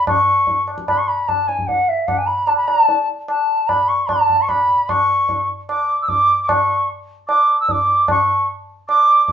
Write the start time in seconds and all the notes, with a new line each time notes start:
0.07 C#6, tabla na, tabla ge
0.47 tabla tin, tabla ge
0.68 tabla na
0.78 tabla ke
0.88 B5, tabla na, tabla ge
0.98 C#6
1.08 B5
1.28 A5, tabla na, tabla ge
1.48 G#5, tabla te
1.59 G#5, tabla ge
1.67 F#5, tabla tin, tabla ge
1.89 E5
2.07 F#5, tabla na, tabla ge
2.18 G#5
2.26 B5
2.47 A5, tabla na
2.57 B5
2.68 A#5, tabla na
2.83 A5
2.89 tabla tin
3.28 A5, tabla na
3.68 B5, tabla na, tabla ge
3.88 C#6
4.09 A5, tabla na, tabla ge
4.30 tabla ge
4.41 C#6
4.49 B5, tabla na, tabla ge
4.89 C#6, tabla na, tabla ge
5.29 tabla tin, tabla ge
5.69 D6, tabla na
6.02 E6
6.08 D6, tabla tin, tabla ge
6.42 D6
6.48 C#6, tabla na, tabla ge
7.28 D6, tabla na
7.61 E6
7.69 D6, tabla tin, tabla ge
8.08 C#6, tabla na, tabla ge
8.88 D6, tabla na
9.27 D6, tabla tin, tabla ge